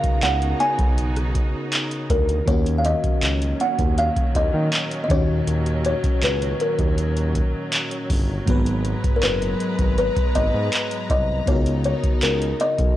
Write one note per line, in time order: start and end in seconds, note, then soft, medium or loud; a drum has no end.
0.00 0.11 C#2 soft
0.00 2.43 C#3 medium
0.00 2.44 C#3 medium
0.00 2.43 B3 medium
0.00 2.44 B3 medium
0.00 2.44 D#4 medium
0.00 2.44 F#4 medium
0.00 2.45 A#4 medium
0.00 0.24 F5 loud
0.00 2.43 A#5 medium
0.00 kick medium
0.00 closed hi-hat soft
0.23 0.54 C#2 loud
0.23 0.61 F#5 loud
0.23 clap loud
0.23 closed hi-hat medium
0.42 closed hi-hat soft
0.60 2.06 G#5 loud
0.60 closed hi-hat medium
0.79 1.41 B1 medium
0.79 kick medium
0.79 closed hi-hat soft
0.98 closed hi-hat medium
1.16 cross-stick medium
1.16 closed hi-hat medium
1.35 kick medium
1.35 closed hi-hat medium
1.72 clap loud
1.72 closed hi-hat medium
1.91 closed hi-hat medium
2.10 2.41 D2 medium
2.10 2.27 A#4 medium
2.10 kick loud
2.10 closed hi-hat medium
2.10 open hi-hat medium
2.29 closed hi-hat medium
2.46 2.94 D#2 loud
2.46 8.43 A#2 medium
2.46 5.05 D#3 medium
2.46 8.43 D#3 medium
2.46 12.97 F#3 medium
2.46 5.06 A#3 medium
2.46 8.43 C#4 medium
2.46 5.07 C#4 medium
2.46 2.79 C#5 medium
2.46 kick loud
2.46 closed hi-hat medium
2.51 5.08 F#4 medium
2.66 closed hi-hat medium
2.78 2.85 F5 medium
2.85 3.63 D#5 loud
2.85 closed hi-hat medium
3.04 3.11 C#2 soft
3.04 kick medium
3.04 closed hi-hat soft
3.23 3.54 C#2 loud
3.23 clap loud
3.23 closed hi-hat medium
3.42 closed hi-hat medium
3.60 3.99 F#5 loud
3.60 closed hi-hat medium
3.79 4.10 D#2 medium
3.79 kick medium
3.79 closed hi-hat soft
3.98 4.33 F5 loud
3.98 closed hi-hat medium
4.16 kick medium
4.16 closed hi-hat medium
4.35 4.51 D#2 medium
4.35 5.03 D#5 medium
4.35 kick medium
4.35 closed hi-hat medium
4.54 4.69 D#3 loud
4.72 clap loud
4.72 closed hi-hat medium
4.91 closed hi-hat medium
5.04 5.10 D#5 medium
5.08 5.41 D#2 loud
5.08 8.06 A#2 medium
5.08 8.05 D#3 medium
5.08 8.07 C#4 medium
5.08 5.82 C#5 medium
5.08 kick loud
5.08 closed hi-hat medium
5.13 8.08 F#4 medium
5.47 5.94 D#2 loud
5.47 closed hi-hat medium
5.66 closed hi-hat medium
5.85 6.24 C#5 medium
5.85 closed hi-hat medium
6.04 6.11 C#2 soft
6.04 kick medium
6.04 closed hi-hat soft
6.22 6.54 C#2 medium
6.22 6.40 B4 medium
6.22 clap loud
6.22 closed hi-hat medium
6.42 closed hi-hat medium
6.60 8.07 A#4 medium
6.60 closed hi-hat medium
6.79 7.41 D#2 medium
6.79 kick medium
6.79 closed hi-hat soft
6.98 closed hi-hat medium
7.17 closed hi-hat medium
7.35 kick medium
7.35 closed hi-hat medium
7.73 clap loud
7.73 closed hi-hat medium
7.91 closed hi-hat medium
8.10 8.41 G1 medium
8.10 kick loud
8.10 open hi-hat medium
8.46 8.94 G#1 loud
8.46 11.43 G#2 medium
8.46 11.43 F#3 medium
8.46 11.44 G#3 medium
8.46 11.44 B3 medium
8.46 11.44 B4 medium
8.46 12.93 A#5 medium
8.46 kick loud
8.46 closed hi-hat medium
8.51 11.45 B4 loud
8.66 closed hi-hat medium
8.85 closed hi-hat medium
9.04 9.11 F#1 soft
9.04 kick loud
9.04 closed hi-hat soft
9.16 9.23 A#4 medium
9.23 9.54 F#1 medium
9.23 9.97 B4 medium
9.23 clap loud
9.23 closed hi-hat medium
9.42 closed hi-hat medium
9.60 closed hi-hat medium
9.79 10.10 G#1 medium
9.79 kick medium
9.79 closed hi-hat soft
9.98 10.36 B4 loud
9.98 closed hi-hat medium
10.16 kick loud
10.16 closed hi-hat soft
10.35 10.51 G#1 medium
10.35 11.10 D#5 loud
10.35 kick medium
10.35 closed hi-hat medium
10.54 10.69 G#2 loud
10.73 clap loud
10.73 closed hi-hat medium
10.91 closed hi-hat medium
11.10 11.41 C2 medium
11.10 11.49 D#5 loud
11.10 kick loud
11.10 closed hi-hat medium
11.46 11.94 C#2 loud
11.46 12.94 C#3 medium
11.46 12.96 C#3 medium
11.46 12.94 B3 medium
11.46 12.96 B3 medium
11.46 12.96 D#4 medium
11.46 12.95 D#4 medium
11.46 12.96 F#4 medium
11.46 11.83 C#5 medium
11.46 kick loud
11.46 closed hi-hat medium
11.51 12.96 A#4 medium
11.66 closed hi-hat medium
11.84 12.24 C#5 medium
11.84 closed hi-hat medium
12.04 12.11 C#2 soft
12.04 kick loud
12.04 closed hi-hat medium
12.23 12.54 C#2 loud
12.23 12.40 A#4 medium
12.23 clap loud
12.23 closed hi-hat medium
12.42 closed hi-hat medium
12.60 12.97 D#5 medium
12.60 closed hi-hat medium
12.79 12.94 B1 medium
12.79 kick loud
12.79 closed hi-hat soft